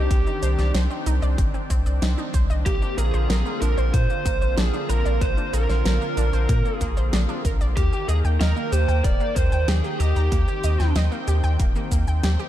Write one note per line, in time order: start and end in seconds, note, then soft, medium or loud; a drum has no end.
0.00 2.62 D#3 medium
0.00 7.73 C4 medium
0.00 2.62 D4 medium
0.00 0.71 G4 loud
0.00 0.71 G4 medium
0.00 2.62 G5 medium
0.11 0.24 C2 loud
0.11 0.20 C4 medium
0.11 kick loud
0.11 closed hi-hat loud
0.11 shaker soft
0.27 0.40 D#4 medium
0.27 shaker soft
0.43 0.56 C2 medium
0.43 0.52 C5 medium
0.43 closed hi-hat medium
0.43 shaker medium
0.58 0.72 C2 medium
0.58 0.72 D5 medium
0.58 snare soft
0.58 shaker soft
0.74 0.88 C2 loud
0.74 0.88 C5 loud
0.74 snare loud
0.74 closed hi-hat medium
0.74 shaker soft
0.90 0.99 C4 medium
0.90 shaker soft
1.06 1.20 C2 loud
1.06 1.15 D#4 loud
1.06 closed hi-hat medium
1.06 shaker medium
1.22 1.36 C2 medium
1.22 1.36 D5 loud
1.22 shaker soft
1.38 1.52 G1 loud
1.38 1.47 C4 medium
1.38 kick loud
1.38 closed hi-hat loud
1.38 shaker soft
1.54 1.63 C4 medium
1.54 shaker soft
1.70 1.83 C2 medium
1.70 1.84 C4 loud
1.70 kick medium
1.70 closed hi-hat medium
1.70 shaker medium
1.86 1.99 C2 medium
1.86 2.00 D5 medium
1.86 shaker soft
2.02 2.15 C2 loud
2.02 2.08 D#4 medium
2.02 snare loud
2.02 closed hi-hat loud
2.02 shaker soft
2.18 2.27 D#4 medium
2.18 shaker soft
2.34 2.47 C2 loud
2.34 2.48 C5 loud
2.34 kick loud
2.34 closed hi-hat medium
2.34 shaker medium
2.50 2.63 C2 medium
2.50 2.55 D#5 loud
2.50 shaker soft
2.66 2.79 A#1 loud
2.66 7.73 D3 medium
2.66 2.75 A#3 medium
2.66 7.73 A#3 medium
2.66 7.73 F4 medium
2.66 2.97 G4 loud
2.66 2.98 G4 loud
2.66 kick loud
2.66 closed hi-hat medium
2.66 shaker soft
2.82 2.95 D4 medium
2.82 shaker soft
2.98 3.11 A#1 medium
2.98 3.61 G#4 loud
2.98 3.07 A#4 medium
2.98 closed hi-hat medium
2.98 shaker medium
3.14 3.27 A#1 medium
3.14 3.27 C5 medium
3.14 shaker soft
3.30 3.43 A#1 loud
3.30 3.43 A#4 loud
3.30 snare loud
3.30 closed hi-hat medium
3.30 shaker soft
3.46 3.55 A#3 medium
3.46 shaker soft
3.61 3.75 A#1 loud
3.61 3.71 D4 loud
3.61 3.91 A#4 loud
3.61 closed hi-hat medium
3.61 shaker medium
3.78 3.91 A#1 medium
3.78 3.91 C5 loud
3.78 shaker soft
3.94 4.07 A#2 loud
3.94 4.03 A#3 medium
3.94 4.53 C5 loud
3.94 4.54 C5 loud
3.94 kick loud
3.94 closed hi-hat medium
3.94 shaker soft
4.10 4.19 A#3 medium
4.10 shaker soft
4.26 4.39 A#1 medium
4.26 4.39 A#3 loud
4.26 kick loud
4.26 closed hi-hat medium
4.26 shaker medium
4.42 4.55 A#1 medium
4.42 4.55 C5 medium
4.42 shaker soft
4.58 4.71 A#1 loud
4.58 4.63 D4 medium
4.58 4.89 G#4 loud
4.58 4.89 G#4 medium
4.58 snare loud
4.58 closed hi-hat loud
4.58 shaker soft
4.74 4.83 D4 medium
4.74 shaker soft
4.89 5.03 A#1 medium
4.89 5.03 A#4 loud
4.89 5.21 A#4 loud
4.89 5.22 A#4 loud
4.89 closed hi-hat medium
4.89 shaker medium
5.05 5.19 A#1 medium
5.05 5.11 D5 loud
5.05 shaker soft
5.21 5.35 A#1 loud
5.21 5.30 A#3 medium
5.21 5.51 C5 loud
5.21 kick loud
5.21 closed hi-hat medium
5.21 shaker soft
5.37 5.51 D4 medium
5.37 shaker soft
5.53 5.67 A#1 loud
5.53 5.62 A#4 medium
5.53 6.76 A#4 medium
5.53 6.76 A#4 loud
5.53 closed hi-hat medium
5.53 shaker medium
5.69 5.83 A#1 medium
5.69 5.83 C5 medium
5.69 snare soft
5.69 shaker soft
5.85 5.99 A#1 loud
5.85 5.99 A#4 loud
5.85 snare loud
5.85 closed hi-hat medium
5.85 shaker soft
6.01 6.10 A#3 medium
6.01 shaker soft
6.17 6.30 A#1 loud
6.17 6.26 D4 loud
6.17 closed hi-hat medium
6.17 shaker medium
6.33 6.46 A#1 medium
6.33 6.47 C5 loud
6.33 shaker soft
6.49 6.62 A#2 loud
6.49 6.58 A#3 medium
6.49 kick loud
6.49 closed hi-hat medium
6.49 shaker soft
6.65 6.74 A#3 medium
6.65 shaker soft
6.76 7.41 G#4 loud
6.76 7.41 G#4 medium
6.81 6.94 A#1 medium
6.81 6.94 A#3 loud
6.81 kick medium
6.81 closed hi-hat medium
6.81 shaker medium
6.97 7.10 A#1 medium
6.97 7.10 C5 medium
6.97 shaker soft
7.13 7.26 A#1 loud
7.13 7.18 D4 medium
7.13 snare loud
7.13 closed hi-hat medium
7.13 shaker soft
7.29 7.38 D4 medium
7.29 shaker soft
7.45 7.58 A#1 loud
7.45 7.58 A#4 loud
7.45 kick loud
7.45 closed hi-hat medium
7.45 shaker medium
7.61 7.74 A#1 medium
7.61 7.66 D5 loud
7.61 shaker soft
7.77 7.90 D#2 loud
7.77 12.49 D#3 medium
7.77 10.29 A#3 medium
7.77 7.86 A#3 medium
7.77 8.08 G4 loud
7.77 8.08 G4 medium
7.77 12.49 G5 medium
7.77 kick loud
7.77 closed hi-hat medium
7.77 shaker soft
7.93 8.06 G4 medium
7.93 shaker soft
8.09 8.22 D#2 medium
8.09 8.17 G#4 medium
8.09 8.23 G#4 medium
8.09 8.18 D#5 medium
8.09 closed hi-hat medium
8.09 shaker medium
8.25 8.38 D#2 medium
8.25 8.38 G5 medium
8.25 shaker soft
8.40 8.54 D#2 loud
8.40 8.70 A#4 loud
8.40 8.54 D#5 loud
8.40 snare loud
8.40 closed hi-hat medium
8.40 shaker soft
8.56 8.65 A#3 medium
8.56 shaker soft
8.72 8.86 D#2 loud
8.72 8.81 G4 loud
8.72 9.04 C5 loud
8.72 closed hi-hat medium
8.72 shaker medium
8.88 9.02 D#2 medium
8.88 9.02 G5 loud
8.88 shaker soft
9.04 9.18 D#1 loud
9.04 9.13 A#3 medium
9.04 9.34 D5 loud
9.04 kick loud
9.04 closed hi-hat medium
9.04 shaker soft
9.20 9.29 A#3 medium
9.20 shaker soft
9.36 9.49 D#2 medium
9.36 9.50 A#3 loud
9.36 9.69 C5 loud
9.36 9.68 C5 loud
9.36 kick loud
9.36 closed hi-hat medium
9.36 shaker medium
9.52 9.65 D#2 medium
9.52 9.66 G5 medium
9.52 shaker soft
9.68 9.81 D#2 loud
9.68 9.74 G4 medium
9.68 10.00 G#4 medium
9.68 10.00 G#4 loud
9.68 snare loud
9.68 closed hi-hat medium
9.68 shaker soft
9.84 9.93 G4 medium
9.84 shaker soft
10.00 10.13 D#2 loud
10.00 10.92 G4 medium
10.00 10.14 D#5 loud
10.00 closed hi-hat medium
10.00 shaker medium
10.16 10.29 D#2 medium
10.16 10.21 A#5 loud
10.16 shaker soft
10.32 10.45 D#2 loud
10.32 10.41 A#3 medium
10.32 12.49 C4 medium
10.32 kick loud
10.32 closed hi-hat medium
10.32 shaker soft
10.48 10.62 G4 medium
10.48 shaker soft
10.64 10.77 D#2 medium
10.64 10.73 D#5 medium
10.64 closed hi-hat medium
10.64 shaker medium
10.80 10.93 D#2 medium
10.80 10.93 G5 medium
10.80 snare soft
10.80 shaker soft
10.96 11.09 D#2 loud
10.96 11.09 D#5 loud
10.96 snare loud
10.96 closed hi-hat medium
10.96 shaker soft
11.12 11.21 A#3 medium
11.12 shaker soft
11.28 11.41 D#2 loud
11.28 11.37 G4 loud
11.28 closed hi-hat medium
11.28 shaker medium
11.44 11.57 D#2 medium
11.44 11.57 G5 loud
11.44 shaker soft
11.60 11.73 D#1 loud
11.60 11.69 A#3 medium
11.60 kick loud
11.60 closed hi-hat medium
11.60 shaker soft
11.76 11.85 A#3 medium
11.76 shaker soft
11.92 12.05 D#2 medium
11.92 12.05 A#3 loud
11.92 kick medium
11.92 closed hi-hat medium
11.92 shaker medium
12.07 12.21 D#2 medium
12.07 12.21 G5 medium
12.07 shaker soft
12.23 12.37 D#2 loud
12.23 12.29 G4 medium
12.23 snare loud
12.23 closed hi-hat medium
12.23 shaker soft
12.39 12.48 G4 medium
12.39 shaker soft